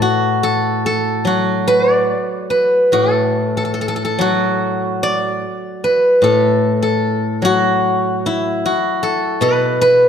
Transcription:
0.00 2.09 A2 medium
0.00 1.27 F#4 medium
0.00 0.43 A4 medium
0.00 0.24 D5 medium
0.43 0.86 A4 medium
0.86 2.92 A4 medium
1.25 3.78 F#3 soft
1.25 3.70 F#4 medium
1.68 1.94 B4 medium
1.94 3.52 D5 medium
2.50 4.55 B4 medium
2.92 5.42 A2 soft
2.92 3.57 A4 medium
3.57 3.64 A4 medium
3.65 3.73 A4 soft
3.74 3.81 A4 medium
3.81 3.88 A4 soft
3.88 3.95 A4 medium
3.96 4.04 A4 soft
4.05 6.23 A4 medium
4.19 6.62 F#3 soft
4.19 6.64 F#4 medium
5.03 6.88 D5 medium
5.84 7.88 B4 medium
6.22 8.63 A2 soft
6.22 6.82 A4 medium
6.82 9.02 A4 medium
7.42 9.81 F#3 medium
7.42 8.65 F#4 medium
8.26 10.09 E4 medium
8.66 10.09 F#4 medium
9.03 10.09 A4 medium
9.41 10.09 B2 medium
9.41 9.81 B4 medium
9.81 10.09 B4 medium

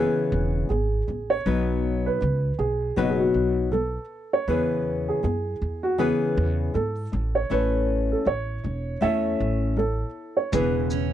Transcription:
0.00 0.69 C#3 medium
0.00 0.68 E3 medium
0.00 0.71 B3 medium
0.00 0.70 E4 medium
0.00 0.66 G#4 medium
0.00 0.70 G#4 medium
0.00 0.73 B4 medium
0.32 0.63 E1 medium
0.69 1.01 G#1 medium
0.69 1.02 C#3 medium
0.69 1.01 E3 soft
0.69 1.02 B3 medium
0.69 1.32 G#4 medium
1.07 1.39 A1 medium
1.07 1.40 C#3 soft
1.07 1.39 E3 soft
1.07 1.41 B3 soft
1.30 2.08 C#5 medium
1.46 2.08 B1 medium
1.46 2.20 B2 medium
1.46 2.21 F#3 medium
1.46 2.23 B3 medium
1.46 2.22 D#4 medium
1.46 2.22 F#4 medium
1.46 2.97 B4 medium
2.06 2.61 B4 medium
2.21 2.53 C#2 medium
2.21 2.53 B2 medium
2.21 2.53 F#3 medium
2.21 2.54 B3 medium
2.59 2.90 B1 medium
2.59 2.94 G#4 medium
2.96 3.28 F#1 medium
2.96 3.70 B2 medium
2.96 3.72 F#3 medium
2.96 3.74 B3 medium
2.96 3.73 D#4 medium
2.96 3.11 F#4 medium
2.96 3.73 F#4 medium
2.96 4.49 B4 medium
3.09 3.19 G#4 medium
3.20 3.69 F#4 medium
3.34 3.96 B1 medium
3.72 4.04 B2 soft
3.72 4.04 F#3 medium
3.72 4.05 B3 medium
3.72 4.34 A4 medium
4.33 4.49 C#5 medium
4.48 5.10 E2 medium
4.48 5.23 C#3 medium
4.48 5.22 E3 medium
4.48 5.23 B3 medium
4.48 5.99 E4 medium
4.48 5.24 G#4 medium
4.48 5.04 B4 medium
4.48 5.24 B4 medium
5.09 5.22 G#4 medium
5.23 5.55 F#2 medium
5.23 5.56 C#3 medium
5.23 5.55 E3 medium
5.23 5.56 B3 medium
5.23 5.86 G#4 medium
5.62 6.11 E2 medium
5.83 5.99 F#4 medium
5.98 6.74 C#3 medium
5.98 6.74 E3 medium
5.98 6.75 B3 medium
5.98 7.50 E4 medium
5.98 6.77 G#4 medium
5.98 6.75 G#4 medium
5.98 6.75 B4 medium
6.37 6.68 E2 medium
6.74 7.06 G#2 medium
6.74 7.07 C#3 medium
6.74 7.06 E3 medium
6.74 7.07 B3 medium
6.74 7.37 A4 medium
7.12 7.44 A1 medium
7.12 7.44 A3 soft
7.12 7.45 C#4 soft
7.35 7.51 C#5 medium
7.50 8.13 A1 medium
7.50 8.24 A3 medium
7.50 8.28 C#4 medium
7.50 9.01 E4 medium
7.50 8.26 A4 medium
7.50 8.07 B4 medium
7.50 9.02 C#5 medium
8.12 8.27 A4 medium
8.25 8.57 A1 medium
8.25 8.58 A3 medium
8.25 8.59 C#4 medium
8.25 9.05 C#5 loud
8.64 8.95 E1 medium
8.64 8.96 A3 soft
8.64 8.97 C#4 soft
9.01 9.33 E2 medium
9.01 9.75 A3 medium
9.01 9.79 C#4 medium
9.01 10.53 E4 medium
9.01 9.78 A4 medium
9.01 10.53 C#5 medium
9.01 9.74 E5 medium
9.40 10.02 A1 medium
9.77 10.09 A3 medium
9.77 10.10 C#4 medium
9.77 10.34 A4 medium
10.37 10.51 C#5 medium
10.52 11.13 E1 medium
10.52 11.13 C#3 medium
10.52 11.13 E3 medium
10.52 11.13 B3 medium
10.52 11.13 E4 medium
10.52 11.13 G#4 medium
10.52 11.13 B4 medium
10.52 kick loud
10.52 shaker medium
10.90 11.13 C#4 medium
10.90 shaker soft

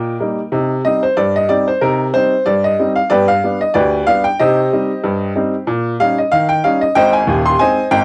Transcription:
0.00 0.15 A#2 medium
0.00 0.49 A#4 medium
0.00 0.49 D#5 medium
0.00 0.48 G5 medium
0.20 0.38 G3 soft
0.20 0.38 A#3 soft
0.20 0.39 D#4 soft
0.52 0.79 C3 medium
0.52 0.71 D#4 soft
0.85 1.03 G3 soft
0.85 1.03 C4 soft
0.85 1.03 D#4 medium
0.85 1.02 D#5 medium
1.03 1.17 C5 medium
1.17 1.44 G2 medium
1.17 1.34 D5 medium
1.36 1.50 D#5 medium
1.49 1.67 G3 medium
1.49 1.67 C4 soft
1.49 1.68 D#4 medium
1.49 1.66 D5 medium
1.68 1.82 C5 medium
1.81 2.09 C3 medium
1.81 2.01 D#4 soft
1.81 2.07 A#4 medium
2.14 2.32 G3 soft
2.14 2.32 C4 medium
2.14 2.32 D#4 medium
2.14 2.44 C5 medium
2.46 2.73 G2 medium
2.46 2.63 D5 medium
2.64 2.89 D#5 medium
2.79 2.97 G3 medium
2.79 2.97 C4 soft
2.79 2.97 D#4 medium
2.96 3.10 F5 medium
3.10 3.37 G2 medium
3.10 3.30 B3 medium
3.10 3.27 G4 medium
3.10 3.27 B4 medium
3.10 3.27 D5 loud
3.28 3.58 F5 loud
3.44 3.61 G3 soft
3.44 3.61 B3 medium
3.44 3.62 D4 medium
3.61 3.75 D#5 medium
3.74 4.02 D2 medium
3.74 4.05 G4 medium
3.74 4.05 B4 medium
3.74 4.05 D5 medium
4.07 4.25 G3 soft
4.07 4.25 B3 medium
4.07 4.25 D4 medium
4.07 4.24 F5 loud
4.24 4.39 G5 medium
4.39 4.67 C3 medium
4.39 4.58 D#4 medium
4.39 5.64 G4 medium
4.39 5.64 C5 medium
4.39 5.42 D#5 loud
4.73 4.90 G3 medium
4.73 4.90 C4 soft
4.73 4.90 D#4 medium
5.04 5.31 G2 medium
5.36 5.53 G3 medium
5.36 5.53 C4 medium
5.36 5.53 D#4 medium
5.67 5.94 A#2 medium
6.00 6.17 G3 medium
6.00 6.18 C#4 medium
6.00 6.18 D#4 medium
6.00 6.17 F5 loud
6.18 6.32 D#5 medium
6.32 6.59 D#3 medium
6.32 6.49 F5 loud
6.49 6.63 G5 medium
6.64 6.82 G3 medium
6.64 6.82 C#4 medium
6.64 6.82 D#4 medium
6.64 6.81 F5 loud
6.81 6.95 D#5 medium
6.95 7.22 G#1 medium
6.95 7.21 G#2 medium
6.95 7.12 C5 medium
6.95 7.12 D#5 medium
6.95 7.13 G5 loud
7.13 7.43 G#5 medium
7.27 7.53 D#1 medium
7.27 7.53 D#2 medium
7.45 7.60 C6 loud
7.59 7.78 G#3 medium
7.59 7.77 C4 medium
7.59 7.78 D#4 medium
7.59 7.90 C5 medium
7.59 7.90 D#5 medium
7.59 7.85 G#5 loud
7.91 8.04 G#1 medium
7.91 8.04 G#2 medium
7.91 8.04 G5 loud

